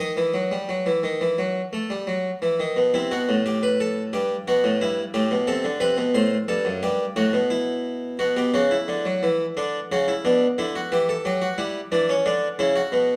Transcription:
0.00 0.17 D#3 medium
0.00 2.38 D#5 medium
0.17 0.34 E3 medium
0.34 0.51 F#3 medium
0.51 0.69 G3 medium
0.69 0.86 F#3 medium
0.86 1.03 E3 medium
1.03 1.21 D#3 medium
1.21 1.38 E3 medium
1.38 1.60 F#3 medium
1.73 1.90 A3 medium
1.90 2.07 G3 medium
2.07 2.29 F#3 medium
2.42 2.59 E3 medium
2.60 2.77 D#3 medium
2.77 2.94 B2 medium
2.94 3.11 C3 medium
2.94 3.11 E4 medium
3.11 3.28 B2 medium
3.11 3.33 F#4 medium
3.29 4.12 A2 medium
3.46 3.63 G4 medium
3.63 3.80 B4 medium
3.80 4.01 A4 medium
4.13 4.35 G2 medium
4.13 4.34 G4 medium
4.48 4.64 B2 medium
4.48 4.68 F#4 medium
4.64 4.81 A2 medium
4.81 5.02 G2 medium
4.81 5.02 E4 medium
5.14 5.31 A2 medium
5.14 5.35 G4 medium
5.31 5.48 B2 medium
5.47 5.64 C3 medium
5.47 5.68 A4 medium
5.64 5.81 D3 medium
5.80 5.97 C3 medium
5.80 6.01 B4 medium
5.97 6.14 B2 medium
6.14 6.35 A2 medium
6.14 6.36 C5 loud
6.48 6.65 G2 medium
6.48 6.69 A4 medium
6.65 6.82 F#2 medium
6.83 7.04 G2 medium
6.83 7.04 G4 loud
7.16 7.33 A2 medium
7.16 7.37 F#4 medium
7.33 8.17 B2 medium
7.50 8.17 E4 medium
8.19 8.36 B2 medium
8.19 8.36 F#4 medium
8.37 8.53 B2 medium
8.37 8.53 G4 medium
8.54 8.75 C#3 medium
8.54 8.70 F#4 medium
8.71 9.54 E4 medium
8.88 9.05 D3 medium
9.05 9.22 F#3 medium
9.23 9.44 E3 medium
9.57 9.78 D3 medium
9.57 9.78 D4 medium
9.92 10.12 C#3 medium
9.92 10.07 F#4 medium
10.08 10.24 E4 medium
10.25 10.45 B2 medium
10.25 10.45 D4 medium
10.58 10.79 D3 medium
10.58 10.74 E4 medium
10.75 10.91 F#4 medium
10.92 11.13 E3 medium
10.92 11.08 G4 medium
11.09 11.25 A4 medium
11.25 11.46 F#3 medium
11.25 11.41 G4 medium
11.42 11.58 F#4 medium
11.58 11.79 G3 medium
11.58 11.79 E4 medium
11.92 12.13 E3 medium
11.92 12.08 D4 medium
12.09 12.25 C#4 medium
12.26 12.46 D3 medium
12.26 12.46 D4 medium
12.59 12.80 C#3 medium
12.59 12.75 E4 medium
12.76 13.16 F#4 medium
12.92 13.16 B2 loud

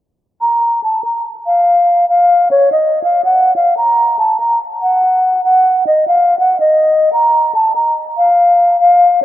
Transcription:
0.41 0.81 A#5 loud
0.84 1.02 A5 medium
1.04 1.22 A#5 medium
1.46 2.06 F5 medium
2.09 2.49 F5 loud
2.51 2.69 C#5 medium
2.72 3.02 D#5 medium
3.03 3.22 F5 medium
3.25 3.54 F#5 medium
3.56 3.74 F5 medium
3.77 4.17 A#5 loud
4.19 4.37 A5 medium
4.40 4.58 A#5 medium
4.82 5.41 F#5 medium
5.45 5.84 F#5 loud
5.87 6.05 D#5 medium
6.08 6.37 F5 medium
6.39 6.57 F#5 medium
6.60 7.10 D#5 medium
7.13 7.52 A#5 loud
7.55 7.73 A5 medium
7.76 7.94 A#5 medium
8.17 8.77 F5 medium
8.80 9.20 F5 loud

